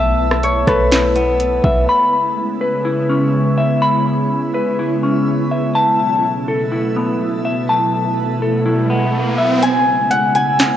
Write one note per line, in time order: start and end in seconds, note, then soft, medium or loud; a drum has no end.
0.00 0.64 B1 loud
0.00 1.84 A3 medium
0.00 0.67 B3 medium
0.00 1.84 B3 medium
0.00 0.43 E4 medium
0.00 1.84 E4 medium
0.00 0.19 A4 medium
0.00 1.85 A4 medium
0.00 1.16 E5 medium
0.00 1.67 E5 loud
0.00 1.84 E5 loud
0.00 0.35 F#5 medium
0.00 1.40 A5 loud
0.31 cross-stick loud
0.43 2.35 C#5 medium
0.43 closed hi-hat medium
0.67 1.60 B1 loud
0.67 1.89 A4 medium
0.67 2.72 B4 medium
0.67 kick loud
0.67 cross-stick loud
0.67 closed hi-hat medium
0.92 1.88 E4 medium
0.92 snare loud
0.92 closed hi-hat medium
1.16 1.88 B3 medium
1.16 closed hi-hat medium
1.40 closed hi-hat medium
1.64 1.87 B1 loud
1.64 1.88 E5 medium
1.64 kick loud
1.88 5.71 C#3 medium
1.88 5.71 G#3 medium
1.88 5.71 B3 medium
1.88 5.72 C#4 medium
1.88 9.58 E4 medium
1.88 5.71 B4 medium
1.88 9.59 E5 medium
1.88 3.34 B5 loud
2.61 4.06 B4 medium
2.85 4.30 E4 medium
3.09 4.55 C#4 medium
3.58 5.03 E5 medium
3.82 5.27 B5 medium
4.54 5.75 B4 medium
4.79 5.76 E4 medium
5.03 5.75 C#4 medium
5.51 5.75 E5 medium
5.75 9.59 B2 medium
5.75 9.59 F#3 medium
5.75 9.59 A3 medium
5.75 9.59 B3 medium
5.75 9.59 A4 medium
5.75 7.20 A5 loud
6.48 7.93 A4 medium
6.72 8.17 E4 medium
6.96 8.42 B3 medium
7.45 8.90 E5 medium
7.69 9.14 A5 loud
7.69 riser medium
8.42 9.63 A4 medium
8.66 9.62 E4 medium
8.90 9.63 B3 medium
9.38 9.62 E5 medium
9.62 10.77 C#3 medium
9.62 10.77 G#3 medium
9.62 10.77 B3 medium
9.62 10.77 C#4 medium
9.62 10.77 E4 medium
9.62 10.77 B4 medium
9.62 10.77 E5 medium
9.62 10.35 G#5 loud
9.62 closed hi-hat medium
10.11 10.77 F#5 medium
10.11 closed hi-hat medium
10.35 10.77 G#5 medium
10.35 closed hi-hat medium
10.59 snare loud
10.59 closed hi-hat medium